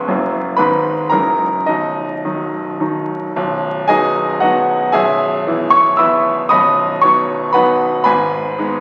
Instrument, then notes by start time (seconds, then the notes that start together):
grand piano
Already playing: C#4 E5
0.08 F#1 F#2 F#3 A#3 E4
0.57 G#1 G#2 D#3 G#3 D#4 B4 B5
1.10 F#1 F#2 E3 G#3 D#4 A#4 A#5
1.66 B0 B1 D#4 D#5
2.25 D#3 F#3 D#4
2.80 D#3 F#3 D#4
3.36 B0 B1
3.88 F#3 B3 D#4 G#4 D#5 G#5
4.40 F#3 B3 D#4 F#4 D#5 F#5
4.92 B0 B1 G#4 E5 G#5
5.47 E3 B3 E4
5.70 C#5 C#6
5.97 E3 B3 E4 E5 B5 E6
6.49 B0 B1 D#5 B5 D#6
7.01 F#3 B3 D#4 C#5 C#6
7.53 F#3 B3 D#4 B4 F#5 B5
8.04 G#1 G#2 B4 G#5 B5
8.58 G#3 B3 D#4